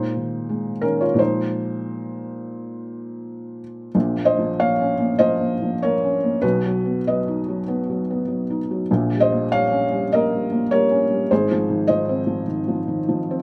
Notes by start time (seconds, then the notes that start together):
Already playing: A#2 G#3 D#4 C5
0.17 D#3
0.49 G#3
0.81 D#3 C#4 A#4
1.01 F4 C#5
1.14 A#2 F3 G#3
1.19 D#4 C5
3.95 A#1 A#2
4.17 A#3
4.25 C5 D#5
4.38 F3
4.59 A#3 C#5 F5
4.80 C#4
5.00 A#3
5.19 F3 C5 D#5
5.41 A#3
5.62 F3
5.83 A#3 A#4 C#5
6.04 C#4
6.24 A#3
6.42 B1 B2 F#4 B4
6.64 F#3
6.85 B3
7.07 F#3 B4 D#5
7.28 D#4
7.49 F#3
7.68 B3
7.90 F#3
8.10 B3
8.28 F#3
8.50 D#4
8.71 F#3
8.91 A#1 A#2
9.14 G3
9.20 C5 D#5
9.32 A#3
9.52 G3 C#5 F5
9.72 C#4
9.92 G3
10.13 A#3 A#4 D#5
10.32 G3
10.52 A#3
10.71 G3 A#4 C#5
10.91 C#4
11.11 G3
11.31 G#1 G#2 G#4 C5
11.51 F3
11.70 D#3
11.88 F3 C5 D#5
12.09 C4
12.27 F3
12.48 D#3
12.68 F3
12.88 D#3
13.08 F3
13.31 C4